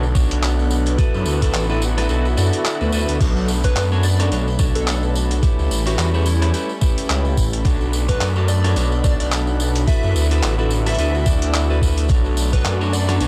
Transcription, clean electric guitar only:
0.15 0.96 D4 medium
0.15 0.96 F#4 medium
0.15 0.96 A4 medium
0.15 0.96 C#5 medium
0.98 1.38 E4 medium
0.98 1.38 F#4 medium
0.98 1.38 A4 medium
0.98 1.38 B4 medium
1.42 1.65 E4 medium
1.42 1.65 F#4 medium
1.42 1.65 A4 medium
1.42 1.65 B4 loud
1.70 1.83 E4 medium
1.70 1.83 F#4 medium
1.70 1.83 A4 medium
1.70 1.83 B4 medium
1.97 2.07 E4 loud
1.97 2.07 F#4 medium
1.97 2.07 A4 medium
1.97 2.07 B4 loud
2.09 2.26 E4 medium
2.09 2.26 F#4 medium
2.09 2.26 A4 medium
2.09 2.26 B4 medium
2.37 2.77 E4 medium
2.37 2.77 F#4 medium
2.37 2.77 A4 medium
2.37 2.77 D5 loud
2.81 2.90 E4 medium
2.81 2.90 F#4 medium
2.81 2.90 A4 medium
2.81 2.90 B4 loud
2.93 3.17 E4 medium
2.93 3.17 F#4 medium
2.93 3.17 A4 medium
2.93 3.17 B4 medium
3.21 3.61 D4 medium
3.21 3.61 F#4 medium
3.21 3.61 A4 medium
3.21 3.61 C#5 medium
3.64 3.87 D4 medium
3.64 3.87 F#4 medium
3.64 3.87 A4 medium
3.64 3.87 C#5 loud
3.92 4.05 D4 medium
3.92 4.05 F#4 medium
3.92 4.05 A4 medium
3.92 4.05 C#5 loud
4.20 4.29 D4 medium
4.20 4.29 F#4 medium
4.20 4.29 A4 medium
4.20 4.29 C#5 loud
4.31 4.48 D4 medium
4.31 4.48 F#4 medium
4.31 4.48 A4 medium
4.31 4.48 C#5 loud
4.59 5.40 D4 medium
4.59 5.40 F#4 medium
4.59 5.40 A4 medium
4.59 5.40 C#5 loud
5.43 5.83 E4 medium
5.43 5.83 G4 medium
5.43 5.83 B4 medium
5.43 5.83 C#5 medium
5.86 6.09 E4 medium
5.86 6.09 G4 medium
5.86 6.09 B4 medium
5.86 6.09 C#5 loud
6.14 6.27 E4 medium
6.14 6.27 G4 medium
6.14 6.27 B4 medium
6.14 6.27 C#5 loud
6.42 6.51 E4 loud
6.42 6.51 G4 medium
6.42 6.51 B4 medium
6.42 6.51 C#5 loud
6.54 6.70 E4 medium
6.54 6.70 G4 medium
6.54 6.70 B4 medium
6.54 6.70 C#5 medium
6.81 7.62 E4 medium
6.81 7.62 G4 medium
6.81 7.62 B4 medium
6.81 7.62 C#5 medium
7.65 8.05 D4 medium
7.65 8.05 F#4 medium
7.65 8.05 A4 medium
7.65 8.05 C#5 medium
8.09 8.31 D4 medium
8.09 8.31 F#4 medium
8.09 8.31 A4 medium
8.09 8.31 C#5 loud
8.36 8.49 D4 medium
8.36 8.49 F#4 medium
8.36 8.49 A4 medium
8.36 8.49 C#5 loud
8.64 8.74 D4 medium
8.64 8.74 F#4 medium
8.64 8.74 A4 medium
8.64 8.74 C#5 loud
8.76 8.93 D4 medium
8.76 8.93 F#4 medium
8.76 8.93 A4 medium
8.76 8.93 C#5 medium
9.04 9.85 D4 medium
9.04 9.85 F#4 medium
9.04 9.85 A4 medium
9.04 9.85 C#5 loud
9.87 10.27 E4 medium
9.87 10.27 F#4 medium
9.87 10.27 A4 medium
9.87 10.27 B4 medium
10.31 10.54 E4 medium
10.31 10.54 F#4 medium
10.31 10.54 A4 medium
10.31 10.54 B4 loud
10.59 10.72 E4 loud
10.59 10.72 F#4 medium
10.59 10.72 A4 medium
10.59 10.72 B4 medium
10.86 10.96 E4 loud
10.86 10.96 F#4 medium
10.86 10.96 A4 medium
10.86 10.96 B4 loud
10.98 11.15 E4 medium
10.98 11.15 F#4 medium
10.98 11.15 A4 medium
10.98 11.15 B4 medium
11.26 11.66 E4 loud
11.26 11.66 F#4 medium
11.26 11.66 A4 medium
11.26 11.66 D5 loud
11.70 11.79 E4 medium
11.70 11.79 F#4 medium
11.70 11.79 A4 medium
11.70 11.79 B4 loud
11.82 12.06 E4 medium
11.82 12.06 F#4 medium
11.82 12.06 A4 medium
11.82 12.06 B4 loud
12.09 12.50 D4 medium
12.09 12.50 F#4 medium
12.09 12.50 A4 medium
12.09 12.50 C#5 medium
12.53 12.76 D4 medium
12.53 12.76 F#4 medium
12.53 12.76 A4 medium
12.53 12.76 C#5 loud
12.81 12.94 D4 medium
12.81 12.94 F#4 medium
12.81 12.94 A4 medium
12.81 12.94 C#5 loud
13.09 13.18 D4 medium
13.09 13.18 F#4 medium
13.09 13.18 A4 medium
13.09 13.18 C#5 loud
13.21 13.28 D4 medium
13.21 13.28 F#4 medium
13.21 13.28 A4 medium
13.21 13.28 C#5 medium

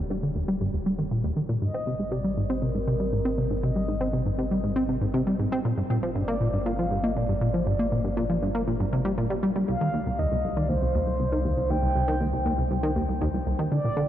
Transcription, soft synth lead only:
1.62 2.13 D#5 loud
2.12 2.52 D5 loud
2.50 2.64 C5 medium
2.63 3.63 A#4 loud
3.64 4.60 D#5 loud
6.15 6.67 D5 loud
6.66 7.05 F5 loud
7.03 7.17 D#5 loud
7.16 7.55 D5 loud
7.53 7.68 C5 medium
7.66 8.17 D5 medium
9.68 10.20 F5 loud
10.19 10.58 D#5 medium
10.56 10.70 D5 medium
10.69 11.72 C5 loud
11.70 12.71 G5 loud
13.71 14.09 D5 loud

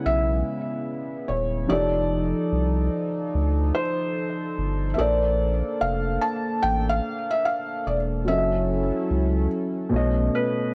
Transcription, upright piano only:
0.00 1.64 C#3 medium
0.00 1.65 C#4 medium
0.00 1.67 E4 medium
0.00 1.68 B4 medium
0.00 1.72 D5 medium
1.67 4.93 F3 medium
1.67 4.94 D#4 medium
1.67 4.95 G4 medium
1.72 4.96 A4 medium
1.72 4.97 D5 medium
4.96 8.22 A#3 medium
4.96 8.23 A4 medium
5.01 8.24 C5 medium
5.01 8.25 D5 medium
8.25 9.87 F#3 medium
8.25 9.88 C#4 medium
8.29 9.89 A4 medium
8.29 8.38 D#5 medium
8.38 9.94 E5 medium
9.89 10.74 B2 medium
9.89 10.74 A3 medium
9.94 10.74 C#5 medium
9.94 10.74 D#5 loud

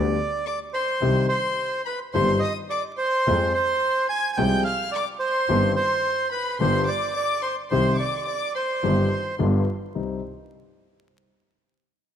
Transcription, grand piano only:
0.00 0.14 D2 medium
0.00 0.15 D3 medium
0.00 0.14 G3 medium
0.00 0.15 B3 medium
0.00 0.15 G4 medium
1.02 1.26 C2 medium
1.02 1.26 C3 medium
1.02 1.26 D#3 medium
1.02 1.26 G3 medium
1.02 1.26 C4 medium
1.02 1.26 G4 medium
2.14 2.38 G1 medium
2.14 2.39 G2 medium
2.14 2.38 D#3 medium
2.14 2.38 G3 medium
2.14 2.39 C4 medium
2.14 2.39 G4 medium
3.27 3.50 F2 medium
3.27 3.51 F3 medium
3.27 3.50 G#3 medium
3.27 3.50 C4 medium
3.27 3.51 G#4 medium
4.38 4.62 C2 medium
4.38 4.62 C3 medium
4.38 4.62 F3 medium
4.38 4.62 G#3 medium
4.38 4.62 C4 medium
4.38 4.62 G#4 medium
5.49 5.73 G1 medium
5.49 5.73 G2 medium
5.49 5.72 D#3 medium
5.49 5.73 G3 medium
5.49 5.73 C4 medium
5.49 5.73 G4 medium
6.61 6.84 G1 medium
6.61 6.84 G2 medium
6.61 6.84 D3 medium
6.61 6.84 G3 medium
6.61 6.84 B3 medium
6.61 6.84 G4 medium
7.72 7.95 C2 medium
7.72 7.95 C3 medium
7.72 7.95 D#3 medium
7.72 7.95 G3 medium
7.72 7.95 C4 medium
7.72 7.95 G4 medium
8.83 9.07 G1 medium
8.83 9.07 G2 medium
8.83 9.07 D#3 medium
8.83 9.07 G3 medium
8.83 9.07 C4 medium
8.83 9.07 G4 medium
9.39 9.63 G1 medium
9.39 9.63 G2 medium
9.39 9.63 D3 medium
9.39 9.63 G3 medium
9.39 9.63 B3 medium
9.39 9.63 F4 medium
9.95 10.19 C2 medium
9.95 10.19 G3 soft
9.95 10.19 C4 soft
9.95 10.19 D#4 medium

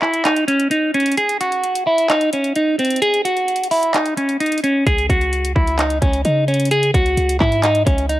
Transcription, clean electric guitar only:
0.02 0.22 E4 medium
0.25 0.45 D#4 medium
0.48 0.68 C#4 medium
0.71 0.91 D#4 medium
0.94 1.14 C#4 medium
1.18 1.37 G#4 loud
1.41 1.84 F#4 medium
1.87 2.07 E4 medium
2.10 2.30 D#4 loud
2.33 2.53 C#4 medium
2.56 2.76 D#4 medium
2.79 2.99 C4 medium
3.02 3.22 G#4 loud
3.25 3.68 F#4 medium
3.71 3.91 E4 medium
3.94 4.14 D#4 medium
4.17 4.37 C#4 medium
4.40 4.60 D#4 medium
4.64 4.84 C#4 medium
4.87 5.07 G#4 loud
5.10 5.53 F#4 medium
5.56 5.76 E4 medium
5.79 5.99 D#4 medium
6.02 6.22 C#4 medium
6.25 6.45 D#4 medium
6.48 6.68 C#4 medium
6.71 6.91 G#4 loud
6.94 7.38 F#4 medium
7.40 7.60 E4 medium
7.64 7.84 D#4 medium
7.86 8.06 C#4 medium
8.09 8.20 D#4 medium

